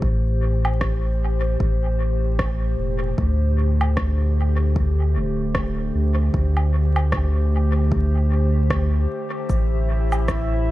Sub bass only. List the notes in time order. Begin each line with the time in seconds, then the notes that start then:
0.02 A1
1.60 A1
2.79 E1
3.18 D2
5.16 D1
5.95 D2
6.34 D2
9.49 A1